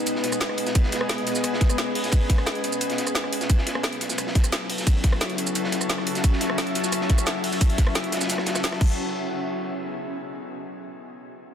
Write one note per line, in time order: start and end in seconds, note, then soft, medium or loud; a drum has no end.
0.00 3.46 G#3 medium
0.00 4.84 B3 medium
0.00 0.73 D#4 medium
0.00 3.50 G#4 medium
0.00 3.46 B4 medium
0.00 3.50 D#5 medium
0.00 3.50 G#5 medium
0.07 closed hi-hat loud
0.07 ride medium
0.07 shaker soft
0.15 snare soft
0.24 snare soft
0.24 closed hi-hat medium
0.24 ride medium
0.24 shaker soft
0.32 cross-stick soft
0.32 shaker medium
0.40 snare loud
0.40 closed hi-hat medium
0.40 ride medium
0.40 shaker soft
0.49 cross-stick soft
0.57 open hi-hat medium
0.57 ride medium
0.67 snare medium
0.67 closed hi-hat soft
0.67 shaker soft
0.75 3.47 C#4 medium
0.75 kick loud
0.75 closed hi-hat medium
0.75 ride loud
0.75 shaker medium
0.83 snare soft
0.92 snare soft
0.92 closed hi-hat medium
0.92 ride medium
1.01 cross-stick medium
1.09 snare loud
1.09 closed hi-hat medium
1.09 ride medium
1.09 shaker soft
1.18 closed hi-hat soft
1.27 snare soft
1.27 closed hi-hat medium
1.27 ride medium
1.27 shaker soft
1.35 snare soft
1.35 shaker medium
1.44 cross-stick soft
1.44 closed hi-hat medium
1.44 ride medium
1.44 shaker soft
1.53 snare medium
1.61 kick loud
1.61 snare medium
1.61 closed hi-hat medium
1.61 ride medium
1.61 shaker soft
1.70 cross-stick soft
1.70 shaker medium
1.78 snare loud
1.78 closed hi-hat medium
1.78 ride medium
1.78 shaker soft
1.95 open hi-hat medium
2.04 snare soft
2.04 closed hi-hat soft
2.04 shaker soft
2.11 kick loud
2.11 closed hi-hat medium
2.11 ride medium
2.11 shaker soft
2.29 kick loud
2.29 snare soft
2.29 closed hi-hat medium
2.29 ride medium
2.38 cross-stick medium
2.38 ride soft
2.46 snare loud
2.46 closed hi-hat medium
2.46 ride medium
2.46 shaker soft
2.55 closed hi-hat soft
2.64 closed hi-hat medium
2.64 ride medium
2.64 shaker soft
2.72 shaker medium
2.81 closed hi-hat medium
2.81 ride medium
2.81 shaker soft
2.90 snare soft
2.90 closed hi-hat soft
2.98 snare soft
2.98 closed hi-hat medium
2.98 ride medium
2.98 shaker soft
3.07 cross-stick soft
3.07 shaker medium
3.15 snare loud
3.15 closed hi-hat medium
3.15 ride medium
3.15 shaker soft
3.24 cross-stick soft
3.33 open hi-hat medium
3.33 ride medium
3.41 snare medium
3.41 closed hi-hat soft
3.41 shaker soft
3.50 8.77 F#3 medium
3.50 8.81 C#4 medium
3.50 8.77 E4 medium
3.50 8.77 A4 medium
3.50 kick loud
3.50 closed hi-hat medium
3.50 ride medium
3.50 shaker medium
3.58 snare soft
3.64 8.81 F#4 medium
3.64 snare medium
3.64 closed hi-hat medium
3.64 ride medium
3.75 8.81 A5 medium
3.75 cross-stick medium
3.83 snare loud
3.83 closed hi-hat medium
3.83 ride medium
3.83 shaker soft
3.92 closed hi-hat soft
4.01 snare soft
4.01 closed hi-hat medium
4.01 ride medium
4.01 shaker soft
4.10 8.81 E5 medium
4.10 snare soft
4.10 shaker medium
4.18 cross-stick soft
4.18 closed hi-hat medium
4.18 ride medium
4.18 shaker soft
4.27 snare medium
4.35 kick loud
4.35 snare medium
4.35 closed hi-hat medium
4.35 ride medium
4.35 shaker soft
4.44 cross-stick soft
4.44 shaker medium
4.52 snare loud
4.52 closed hi-hat medium
4.52 ride medium
4.52 shaker medium
4.69 open hi-hat medium
4.78 snare soft
4.78 closed hi-hat soft
4.78 shaker soft
4.87 kick loud
4.87 closed hi-hat medium
4.87 ride medium
4.87 shaker medium
5.03 kick loud
5.03 snare soft
5.03 closed hi-hat medium
5.03 ride medium
5.12 cross-stick medium
5.12 ride soft
5.21 snare loud
5.21 closed hi-hat medium
5.21 ride medium
5.21 shaker medium
5.30 closed hi-hat soft
5.38 closed hi-hat medium
5.38 ride medium
5.38 shaker soft
5.47 shaker medium
5.55 closed hi-hat medium
5.55 ride medium
5.55 shaker medium
5.64 snare soft
5.72 snare soft
5.72 closed hi-hat medium
5.72 ride medium
5.72 shaker soft
5.81 cross-stick soft
5.81 shaker medium
5.89 snare loud
5.89 closed hi-hat medium
5.89 ride loud
5.89 shaker medium
5.98 cross-stick soft
6.07 open hi-hat medium
6.07 ride medium
6.15 snare medium
6.15 closed hi-hat soft
6.15 shaker soft
6.24 kick loud
6.24 closed hi-hat loud
6.24 ride medium
6.24 shaker medium
6.33 snare soft
6.41 snare medium
6.41 closed hi-hat medium
6.41 ride medium
6.50 cross-stick medium
6.58 snare loud
6.58 closed hi-hat medium
6.58 ride medium
6.58 shaker medium
6.67 closed hi-hat soft
6.75 snare soft
6.75 closed hi-hat medium
6.75 ride medium
6.75 shaker soft
6.83 snare medium
6.83 shaker medium
6.92 cross-stick soft
6.92 closed hi-hat loud
6.92 ride medium
6.92 shaker medium
7.01 snare medium
7.10 kick loud
7.10 snare medium
7.10 closed hi-hat medium
7.10 ride medium
7.10 shaker soft
7.18 cross-stick soft
7.18 shaker medium
7.26 snare loud
7.26 closed hi-hat loud
7.26 ride medium
7.26 shaker medium
7.44 open hi-hat medium
7.52 snare soft
7.52 closed hi-hat soft
7.52 shaker soft
7.61 kick loud
7.61 closed hi-hat medium
7.61 ride medium
7.61 shaker medium
7.70 closed hi-hat soft
7.78 kick loud
7.78 snare soft
7.78 closed hi-hat medium
7.78 ride medium
7.78 shaker soft
7.87 cross-stick medium
7.87 ride soft
7.95 snare loud
7.95 closed hi-hat loud
7.95 ride medium
7.95 shaker medium
8.04 closed hi-hat soft
8.12 snare medium
8.12 closed hi-hat medium
8.12 ride medium
8.12 shaker soft
8.17 snare medium
8.17 ride medium
8.21 snare medium
8.21 ride medium
8.21 shaker medium
8.25 snare medium
8.25 ride medium
8.29 snare loud
8.29 closed hi-hat loud
8.29 ride medium
8.29 shaker medium
8.38 cross-stick soft
8.38 snare soft
8.46 snare loud
8.46 closed hi-hat medium
8.46 ride medium
8.46 shaker soft
8.55 cross-stick soft
8.55 snare loud
8.55 ride medium
8.55 shaker medium
8.64 snare loud
8.64 closed hi-hat medium
8.64 ride medium
8.64 shaker soft
8.72 cross-stick soft
8.72 snare loud
8.72 ride medium
8.81 kick loud
8.81 crash medium